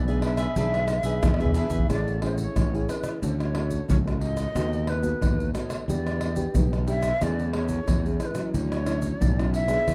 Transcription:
Already playing: B1 B2 D5
0.07 B3 D4 G#4 B4 E5, pandeiro, shaker
0.22 D4 G#4 B4 E5, pandeiro, tamborim, surdo
0.37 G#4 B4 E5, pandeiro, tamborim, shaker
0.56 B1 E3 B3 D4 G#4 B4 E5, pandeiro, shaker, surdo
0.74 G#4 B4 E5, pandeiro, tamborim, shaker
0.88 muted cavaquinho stroke, pandeiro, tamborim, shaker
1.03 B1 B3 D4 G#4 B4 E5, pandeiro, shaker, surdo
1.23 E2 B2, pandeiro, tamborim, shaker, surdo
1.34 tamborim
1.40 B3 D4 G#4 B4 E5, pandeiro, shaker
1.45 surdo
1.54 D4 G#4 B4 E5, pandeiro, shaker
1.70 E2 G#4 B4 E5, pandeiro, shaker, surdo
1.78 surdo
1.89 A1 A3 C#4 E4 G#4 D5, pandeiro, tamborim, shaker, surdo
2.08 pandeiro, shaker
2.22 C#4 E4 G#4 C5, pandeiro, tamborim, surdo
2.35 C#5, pandeiro, shaker, surdo
2.56 A1 E3, pandeiro, tamborim, shaker, surdo
2.74 C#4 E4 G#4, pandeiro, shaker
2.89 B4, pandeiro, tamborim, shaker, surdo
3.04 pandeiro, tamborim, shaker
3.22 D2 D3 A3 C#4 F#4 C#5, pandeiro, shaker, surdo
3.40 pandeiro, tamborim, shaker
3.54 A3 C#4 F#4, pandeiro, tamborim
3.70 pandeiro, shaker, surdo
3.88 C#2 A2 C#5, pandeiro, shaker, surdo
4.06 A3 C#4 F#4, pandeiro, tamborim, shaker
4.21 D#5, pandeiro
4.37 pandeiro, tamborim, shaker, surdo
4.55 D#2 D#3 A3 B3 F#4, pandeiro, tamborim, shaker, surdo
4.73 pandeiro, shaker
4.87 B4, pandeiro, tamborim
5.02 A3 B3 F#4, pandeiro, shaker, surdo
5.21 D#2 D#3, pandeiro, tamborim, shaker, surdo
5.40 pandeiro, shaker
5.53 A3 B3 F#4 C#5, pandeiro, tamborim, shaker, surdo
5.70 pandeiro, tamborim, shaker
5.88 E2 E3 D4 G4 B4 D#5, pandeiro, shaker, surdo
5.93 D5
6.07 pandeiro, tamborim, shaker
6.21 pandeiro, tamborim
6.36 D4 G4 B4, pandeiro, shaker, surdo
6.54 B1 B2, pandeiro, shaker, surdo
6.73 pandeiro, tamborim, shaker
6.87 D4 G4 B4 E5, pandeiro, shaker
7.03 pandeiro, tamborim, shaker, surdo
7.21 E2 E3 A3 C#4 G#4 D5, pandeiro, tamborim, shaker, surdo
7.39 pandeiro, shaker
7.53 A3 C#4 G#4 C#5, pandeiro, tamborim
7.68 pandeiro, shaker, surdo
7.87 E2 E3, pandeiro, tamborim, shaker, surdo
8.05 A3 C#4 G#4, pandeiro, shaker
8.20 C5, pandeiro, tamborim, shaker, surdo
8.26 B4
8.34 F#3 C#4 E4, pandeiro, tamborim, shaker
8.54 D2 D3 C#5, pandeiro, shaker, surdo
8.72 pandeiro, tamborim, shaker
8.86 F#3 C#4 E4, pandeiro, tamborim, shaker
9.02 pandeiro, shaker, surdo
9.21 B1 A2 D5, pandeiro, shaker, surdo
9.39 F#3 C#4 E4, pandeiro, tamborim, shaker
9.53 E5, pandeiro, shaker
9.68 B3 D4 G#4, pandeiro, tamborim, shaker, surdo
9.87 E2 E3, pandeiro, tamborim, shaker, surdo

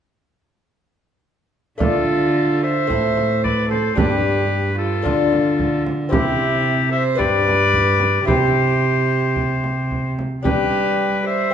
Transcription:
1.78 D3 A3 D4 F4 A4, frame drum
2.63 C5 E5
2.87 A2 A3 C4 E4, frame drum
3.18 frame drum
3.44 B4 D5, frame drum
3.69 A4 C5, frame drum
3.96 G2 D4 G4 B4, frame drum
4.78 F4 A4
5.02 D3 A3 D4 F4, frame drum
5.33 frame drum
5.59 frame drum
5.87 frame drum
6.09 C3 C4 E4 G4, frame drum
6.92 C5 E5
7.15 G2 B3 D4 G4 B4 D5
7.20 frame drum
7.48 frame drum
7.74 frame drum
8.00 frame drum
8.25 C3 E4 G4 C5, frame drum
9.36 frame drum
9.64 frame drum
9.91 frame drum
10.19 frame drum
10.43 G3 D4 G4 B4, frame drum
11.26 C5 E5
11.51 C4

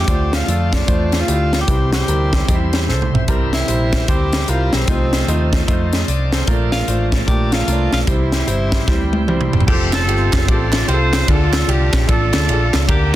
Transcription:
0.00 G4
0.08 D2 D3 A3 C4 D4 F4 A4 C5, kick, closed hi-hat
0.33 F4, snare, closed hi-hat
0.47 F2 A3 D4 F4 A4, closed hi-hat
0.73 D4, kick, snare, closed hi-hat
0.87 E2 A3 D4 F4 C5, kick, closed hi-hat
1.12 snare, closed hi-hat
1.20 F4
1.27 D2 A3 D4 E4 G4, closed hi-hat
1.32 F4
1.53 snare, closed hi-hat
1.61 G4
1.67 C2 C3 G3 C4 D#4 E4 B4 C5, kick, closed hi-hat
1.72 E4 C5
1.93 G4, snare, closed hi-hat
2.08 D2 G3 C4 E4 A#4, closed hi-hat
2.33 kick, snare, closed hi-hat
2.48 E2 G3 C4 D#4 G4, kick, closed hi-hat
2.53 E4
2.73 snare, closed hi-hat
2.88 C2 A4 C5, snare
3.02 mid tom
3.13 B1 C5 E5, floor tom
3.28 C2 C3 G3 C4 E4 A#4, kick, closed hi-hat
3.53 E4, snare, closed hi-hat
3.68 A#1 G3 C4 E4 C5, closed hi-hat
3.93 kick, snare, closed hi-hat
4.08 D2 G3 C4 E4 G4 C5, kick, closed hi-hat
4.33 snare, closed hi-hat
4.48 C2 G3 C4 E4 F4 A#4, closed hi-hat
4.73 B1 C4, snare, closed hi-hat
4.88 C2 C3 F3 A3 C4 D#4 F4 G#4 C5, kick, closed hi-hat
4.93 A4
5.13 snare, closed hi-hat
5.28 D#2 A3 D#4 F4 C5, closed hi-hat
5.53 kick, snare, closed hi-hat
5.67 F2 A3 D#4 F4 C5, kick, closed hi-hat
5.93 snare, closed hi-hat
6.08 C2 A4 D5, closed hi-hat
6.32 G4 A4 C5, snare, closed hi-hat
6.47 A#1 A#2 F3 A3 A#3 C4 D4 F4 G4 A#4, kick, closed hi-hat
6.52 D4 A4
6.72 F4, snare, closed hi-hat
6.87 A1 A3 D4 F4 C5, closed hi-hat
7.12 kick, snare, closed hi-hat
7.27 A#1 A3 D4 F4 G4 A#4, kick, closed hi-hat
7.52 F4, snare, closed hi-hat
7.67 C2 A3 C#4 F4 A#4, closed hi-hat
7.72 D4
7.92 B1 F4, snare, closed hi-hat
8.07 C2 C3 D#3 G3 C4 E4 G4 C5, kick, closed hi-hat
8.12 E3
8.32 snare, closed hi-hat
8.47 G1 G3 C4 E4 C5, closed hi-hat
8.72 kick, snare, closed hi-hat
8.87 D2 G3 C4 E4 C5, kick, snare
9.13 high tom
9.28 C2 G3 C4 E4 C5, mid tom
9.41 mid tom
9.53 E1, floor tom
9.61 floor tom
9.67 F1 A3 C4 F4 G4 A4, kick, crash
9.93 C4 F4 A4, snare, clap, ride bell
10.07 G1 C4 F4 G4, ride bell
10.33 F1, kick, snare, clap, ride bell
10.48 A1 C4 F4 G4 A4 D5, kick, ride bell
10.54 A4
10.72 snare, clap, ride bell
10.88 C2 C4 F4 G4 A4 C5, ride bell
10.93 A4
11.13 snare, clap, ride bell
11.28 D2 D3 A3 D4 F4 G#4 A4, kick, ride bell
11.34 A4
11.53 snare, clap, ride bell
11.68 C2 D4 F4 G4, ride bell
11.93 kick, snare, clap, ride bell
12.08 A1 D4 F4 A4, kick, ride bell
12.33 D2, snare, clap, ride bell
12.48 A#1 D4 F4 G#4, ride bell
12.54 A4
12.73 C#2, snare, clap, ride bell
12.87 D2 D3 A#3 D4 F4 G4 A#4, kick, ride bell
12.93 G4
13.12 A#4

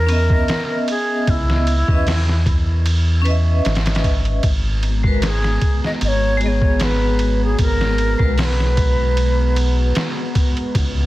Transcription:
Already playing: E2 A#4
0.07 B3 C#4, ride
0.12 D#5 E5
0.30 kick
0.48 snare, ride
0.88 G#4, ride
1.27 C#2 E4, kick, ride
1.50 snare
1.67 ride
1.87 E2 C#4 B4 D#5 E5, kick
2.07 snare, open hi-hat
2.29 snare
2.46 kick, ride
2.86 ride
3.22 C#4 B4, ride
3.28 D#5 E5
3.65 G#1, snare, ride
3.75 snare, ride
3.86 snare, ride
3.95 snare, ride
4.04 kick, ride
4.25 ride
4.43 G#1 G#3 B3 F#4 A#5, kick, ride
4.83 ride
5.03 G#3 F#4 A#4, kick
5.07 B4
5.22 G#4, snare, ride
5.44 snare
5.62 kick, ride
5.84 D#5, snare
6.01 G#1 D#5, ride
6.08 C#5
6.37 G#3 F#4, ride
6.43 B3 G#4 D#5
6.48 C#5
6.62 kick
6.80 B4, snare, ride
7.19 ride
7.45 G#4
7.59 G#1 A#4, kick, ride
7.81 snare
7.98 ride
8.19 B1 G#3 F#4 A#4, kick
8.23 B4
8.38 C#5, snare, open hi-hat
8.44 B4
8.60 snare
8.77 kick, ride
9.17 ride
9.56 ride
9.95 snare, ride
10.35 kick, ride
10.57 ride
10.74 C#2 C#3 B3 E4, kick, ride

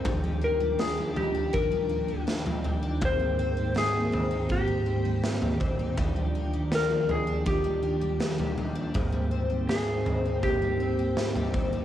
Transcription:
Already playing: G#2 D#3 G3 C4 D#4 G5
0.05 D#2 D#3 F3 D4, kick, floor tom
0.24 G3
0.41 A#3 A#4
0.60 G3
0.79 D4 G#4, snare
0.97 G3
1.16 A#3 G4, floor tom
1.35 D4
1.53 D#3 A#4, kick
1.71 G3
1.89 A#3
2.08 G3
2.27 D4, snare
2.45 G3, floor tom
2.64 A#3, floor tom
2.82 D4
3.01 G#2 A#3 C4 C5, kick, floor tom
3.19 G3
3.39 C4
3.57 G3
3.75 D#4 G#4, snare
4.12 C4, floor tom
4.31 D#4
4.49 G#2 G4, kick
4.67 G3
4.86 C4
5.05 G3
5.23 D#4, snare
5.42 G3, floor tom
5.60 C4, kick, floor tom
5.79 D#4
5.98 D#2 D#3 F3 D4, kick, floor tom
6.16 G3
6.35 A#3
6.53 G3
6.72 D4 A#4, snare
7.09 A#3 G#4, floor tom
7.27 D4
7.46 D#3 G4, kick, floor tom
7.64 G3
7.82 A#3
8.01 G3
8.20 D4, snare
8.38 G3, floor tom
8.57 A#3, floor tom
8.75 D4
8.94 G#2 A#3 C4 G5, kick, floor tom
9.12 G3
9.31 C4
9.50 G3
9.69 D#4 G#4, snare
10.06 C4, floor tom
10.25 D#4
10.43 G#2 G4, kick, floor tom
10.62 G3
10.80 C4
10.99 G3
11.17 D#4, snare
11.35 G3, floor tom
11.54 C4, kick, floor tom
11.73 D#4

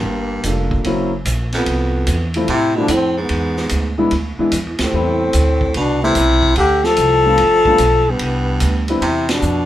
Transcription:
Already playing: G2 A#3
0.03 G1
0.43 F1 G3 A#3 D4 F4 A4, hi-hat pedal, ride
0.71 kick
0.84 F#1 F#3 A#3 C4 C#4 E4, ride
1.25 A#1, hi-hat pedal, ride
1.52 F2 B3, snare, ride
1.66 C2, ride
2.07 E2, hi-hat pedal, ride
2.34 F3 G3 A3 C4 E4, ride
2.48 A2 C3 E4, ride
2.75 B2 F3 G3 A3 C4 D4 E4
2.88 F2 A2, hi-hat pedal, ride
2.94 C4
3.17 G#2
3.22 B3
3.29 E2, ride
3.57 snare
3.69 D2, hi-hat pedal, ride
3.98 E3 G#3 B3 D4 E4
4.11 D2, ride
4.39 E3 G#3 B3 D4 E4, muted upright bass stroke
4.52 F2, hi-hat pedal, ride
4.66 E2
4.79 D2, snare, ride
4.83 A2 C4
4.93 E2 G3 A3 B3 C4 E4
5.33 D2, hi-hat pedal, ride
5.61 kick
5.74 C2 B2, ride
5.79 D4
6.03 C3 G3 A3 B3 C4 E4
6.15 B1, hi-hat pedal, ride
6.43 kick
6.56 D2 D3 G4, ride
6.84 F3 A4, snare
6.97 C2, hi-hat pedal, ride
7.25 G3 A3 B3 D4 F4
7.38 G1, ride
7.65 G3 A3 B3 D4 F4, kick
7.78 B1, hi-hat pedal, ride
8.09 G2 B3
8.19 C2, ride
8.60 D2, hi-hat pedal, ride
8.88 G3 B3 C4 D4 E4, ride
9.01 E2 C3 E4, ride
9.29 B2 D4, snare, ride
9.42 F2, hi-hat pedal

